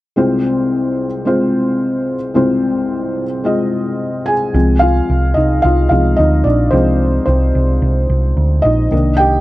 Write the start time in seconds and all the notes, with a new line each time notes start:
0.16 C2 C3 G#3 C4 F4 C5
1.25 G#3 C4 F4 C5
2.34 C2 C3 G#3 C4 F4 C5
3.44 G#3 C4 F4 D#5
4.26 G#4 G#5
4.54 C2 F3 G#3 C4
4.79 F4 F5
5.10 C2
5.34 C2 D#4 D#5
5.62 C2 F4 F5
5.89 C2 F3 G#3 C4 F4 F5
6.16 D2 D#4 D#5
6.44 A#1 D4 D5
6.71 C2 F3 G#3 C4 C5
7.26 C2 C4 C5
7.55 C2
7.82 C2
8.09 C2
8.37 D2
8.62 A#1 D#4 D#5
8.91 C2 D#3 A#3 D4
9.17 G4 G5